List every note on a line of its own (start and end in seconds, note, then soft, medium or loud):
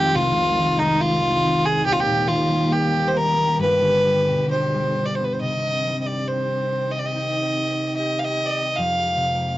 0.00 1.90 F1 medium
0.00 0.20 F2 medium
0.00 0.20 D#3 medium
0.00 3.55 D#3 medium
0.00 0.61 G#3 medium
0.00 1.83 G#3 medium
0.00 0.99 C4 medium
0.00 1.83 F4 medium
0.00 0.17 G4 loud
0.15 1.90 C2 medium
0.15 0.35 C3 medium
0.15 0.80 F4 loud
0.36 0.61 C3 medium
0.58 1.19 D#3 medium
0.77 1.26 G#3 medium
0.77 1.02 D#4 medium
0.99 1.43 C4 medium
0.99 1.67 F4 medium
1.21 1.90 D#3 medium
1.44 4.34 C4 medium
1.64 1.90 G#3 medium
1.64 1.85 G#4 medium
1.85 3.64 D#1 medium
1.85 3.64 D#2 medium
1.85 3.57 A#3 medium
1.85 5.38 G4 medium
1.85 1.93 G4 loud
1.92 2.01 F4 medium
2.00 2.30 G4 loud
2.06 2.33 A#2 medium
2.27 2.91 D#3 soft
2.27 2.74 F4 medium
2.49 2.98 G3 soft
2.71 3.13 A#3 medium
2.71 3.09 G4 medium
2.92 3.64 D#3 soft
3.08 3.19 C5 medium
3.14 4.34 A#3 soft
3.14 3.60 A#4 medium
3.36 3.64 G3 soft
3.58 5.47 G1 medium
3.58 4.32 G2 medium
3.58 5.40 B2 medium
3.58 5.40 D3 medium
3.58 4.48 B4 medium
3.81 4.32 D3 soft
4.05 4.73 G3 soft
4.28 5.47 B2 soft
4.51 4.97 D4 soft
4.51 5.07 C5 medium
4.74 5.47 G3 soft
4.98 7.21 D4 soft
5.06 5.17 D5 soft
5.15 5.26 C5 medium
5.19 5.48 B3 soft
5.24 5.35 B4 soft
5.33 5.41 C5 soft
5.41 8.82 C3 soft
5.41 8.74 D#3 soft
5.41 8.74 C4 soft
5.41 9.58 G4 medium
5.41 6.01 D#5 medium
5.85 8.82 G3 soft
6.01 6.08 D#5 soft
6.07 6.29 D5 soft
6.28 9.30 C4 soft
6.28 6.93 C5 soft
6.91 7.01 D#5 medium
6.99 7.07 D5 medium
7.06 7.96 D#5 medium
7.15 9.58 D#4 soft
7.97 9.58 G4 soft
7.97 8.21 D#5 medium
8.19 8.26 F5 soft
8.24 8.48 D#5 medium
8.46 8.51 D5 soft
8.46 8.78 D#5 medium
8.76 9.58 F2 soft
8.76 9.58 F3 medium
8.76 9.58 G#3 soft
8.76 9.57 F5 medium
9.16 9.58 C3 soft